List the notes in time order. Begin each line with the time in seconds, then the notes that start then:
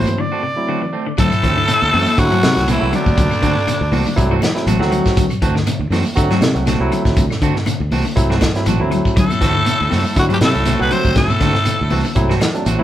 Already playing: F#3 A3 C4 E4 C5
0.06 E3, muted fingered electric bass stroke, muted clean electric guitar stroke, closed hi-hat, shekere
0.18 D3 D5, muted clean electric guitar stroke
0.32 A3 C4 F#4
0.43 C3, muted clean electric guitar stroke
0.56 F#3 A3 C4 E4
0.68 D3 A3 C4 F#4
0.82 E3, muted clean electric guitar stroke
0.93 A3 C4
1.06 D3, muted clean electric guitar stroke
1.18 D2 A2 F#3 A3 C4 A4, muted clean electric guitar stroke, kick, closed hi-hat, low conga, shekere
1.31 muted clean electric guitar stroke, closed hi-hat, claves, shekere
1.43 D2 E3 A3 C4, kick, closed hi-hat
1.56 D3, muted clean electric guitar stroke, shekere
1.68 D3, closed hi-hat, high conga, claves, shekere
1.82 D2, muted clean electric guitar stroke, high conga
1.93 F#2 E3 A3 C4 F#4, open hi-hat, high conga, shekere
2.06 muted clean electric guitar stroke, high conga, shekere
2.17 F#2 D3 F#3 A3 C4 E4 F#4, kick, closed hi-hat, claves, shekere
2.31 F#3 A3 C4 F#4, closed hi-hat
2.43 C3, muted clean electric guitar stroke, snare, closed hi-hat, high conga, claves, shekere
2.55 C2 F#3 A3 C4 E4, snare, closed hi-hat, shekere
2.67 E2 D3 E3 A3 C4 E4 F#4, closed hi-hat, high conga, shekere
2.80 C2 C3 F#3 A3 C4 F#4
2.92 D2 D3 D4, muted clean electric guitar stroke, closed hi-hat, low conga, claves, shekere
3.06 D2, muted clean electric guitar stroke, kick, high conga, shekere
3.17 D2 C3, kick, closed hi-hat, low conga, shekere
3.31 muted clean electric guitar stroke, high conga, claves, shekere
3.42 D3 A3 C4 F#4, kick, closed hi-hat
3.56 C3, muted clean electric guitar stroke, shekere
3.67 D3, muted fingered electric bass stroke, closed hi-hat, high conga, claves, shekere
3.81 D2, muted clean electric guitar stroke
3.92 C2 E3 A3 C4 F#4, open hi-hat, high conga, shekere
4.06 D3, muted clean electric guitar stroke, low conga, shekere
4.16 C2 F#3 A3 C4 E4, muted clean electric guitar stroke, kick, closed hi-hat, claves, shekere
4.31 E3 A3 C4 F#4
4.41 E3, muted clean electric guitar stroke, snare, closed hi-hat, high conga, claves, shekere
4.55 F#3 A3 C4 E4, snare, closed hi-hat, shekere
4.67 A1 F#3 A3 C4 F#4, closed hi-hat, high conga, shekere
4.79 D2 E3 F#3 A3 C4 F#4, snare
4.92 F#3, muted clean electric guitar stroke, closed hi-hat, low conga, claves, shekere
5.06 muted clean electric guitar stroke, kick, snare, shekere
5.17 D2 F#3, kick, closed hi-hat, low conga, shekere
5.30 muted clean electric guitar stroke, closed hi-hat, claves, shekere
5.42 D2 E3 A3 C4 F#4, kick, closed hi-hat
5.55 D3, muted clean electric guitar stroke, snare, shekere
5.66 D3, closed hi-hat, high conga, claves, shekere
5.79 D2, muted clean electric guitar stroke
5.90 F#2 E3 A3 C4 F#4, snare, open hi-hat, high conga, shekere
6.05 muted clean electric guitar stroke, low conga, shekere
6.15 D3 F#3 A3 C4 F#4, muted clean electric guitar stroke, kick, closed hi-hat, claves, shekere
6.30 F#3 A3 C4 F#4, snare, closed hi-hat
6.41 C3, muted clean electric guitar stroke, snare, closed hi-hat, high conga, claves, shekere
6.54 C2 F#3 A3 C4 F#4, closed hi-hat, shekere
6.66 D3 A3 C4 F#4, snare, closed hi-hat, high conga, shekere
6.80 C2 F#3 A3 C4 E4 F#4
6.92 D3, muted clean electric guitar stroke, closed hi-hat, low conga, claves, shekere
7.05 D2, muted clean electric guitar stroke, kick, snare, shekere
7.16 D2 C3, kick, closed hi-hat, low conga, shekere
7.30 muted clean electric guitar stroke, snare, claves, shekere
7.42 D3 A3 C4 F#4, kick, closed hi-hat
7.56 C3, muted clean electric guitar stroke, snare, shekere
7.66 D3, muted fingered electric bass stroke, closed hi-hat, high conga, claves, shekere
7.80 D2, muted clean electric guitar stroke
7.91 C2 E3 A3 C4 F#4, open hi-hat, high conga, shekere
8.05 D3, muted fingered electric bass stroke, muted clean electric guitar stroke, shekere
8.15 C2 F#3 A3 C4 E4, muted clean electric guitar stroke, kick, closed hi-hat, claves, shekere
8.30 A3 C4 F#4, muted clean electric guitar stroke, snare
8.41 E3, muted clean electric guitar stroke, kick, snare, closed hi-hat, high conga, claves, shekere
8.55 F#3 A3 C4 E4, snare, closed hi-hat, shekere
8.66 A1 F#3 A3 C4 F#4, closed hi-hat, high conga, shekere
8.80 D2 E3 F#3 A3 C4 E4
8.91 F#3, muted clean electric guitar stroke, closed hi-hat, low conga, claves, shekere
9.05 muted clean electric guitar stroke, kick, shekere
9.16 D2 A2 F#3 A3 A4, kick, closed hi-hat, low conga, shekere
9.30 muted clean electric guitar stroke, closed hi-hat, high conga, claves, shekere
9.41 D2 E3 A3 C4 F#4, kick, snare, closed hi-hat
9.55 D3, muted clean electric guitar stroke, shekere
9.66 D3, closed hi-hat, high conga, claves, shekere
9.80 D2, muted clean electric guitar stroke
9.90 F#2 C3 A3 C4 F#4, snare, open hi-hat, high conga, shekere
10.05 muted clean electric guitar stroke, low conga, shekere
10.15 F#2 D3 F#3 A3 C4 E4 F#4, muted clean electric guitar stroke, kick, closed hi-hat, claves, shekere
10.29 G2 F#3 G3 A3 C4 F#4, closed hi-hat
10.34 G4
10.41 A2 C3 A3 A4, muted clean electric guitar stroke, snare, closed hi-hat, high conga, claves, shekere
10.54 C2 F#3 A3 C4 E4, closed hi-hat, shekere
10.65 D3 A3 C4 F#4, closed hi-hat, high conga, shekere
10.79 C2 B2 C3 F#3 A3 B3 C4 F#4 B4
10.91 C3 D3 C4 C5, muted clean electric guitar stroke, closed hi-hat, low conga, claves, shekere
11.05 D2, muted clean electric guitar stroke, kick, shekere
11.15 D2 A2 C3 A3 A4, kick, snare, closed hi-hat, low conga, shekere
11.29 muted clean electric guitar stroke, high conga, claves, shekere
11.40 D3 A3 C4 F#4, kick, snare, closed hi-hat
11.54 C3, muted clean electric guitar stroke, snare, shekere
11.65 D3, muted fingered electric bass stroke, closed hi-hat, high conga, claves, shekere
11.80 D2, muted clean electric guitar stroke
11.90 C2 E3 A3 C4 F#4, open hi-hat, high conga, shekere
12.05 D3, muted clean electric guitar stroke, high conga, shekere
12.15 C2 F#3 A3 C4 E4, muted clean electric guitar stroke, kick, closed hi-hat, claves, shekere
12.29 E3 A3 C4 F#4, snare
12.40 E3, muted clean electric guitar stroke, snare, closed hi-hat, high conga, claves, shekere
12.53 F#3 A3 C4 D4, closed hi-hat, shekere
12.66 A1 A3 C4 F#4, closed hi-hat, high conga, shekere
12.78 D2 E3 F#3 A3 C4 E4 F#4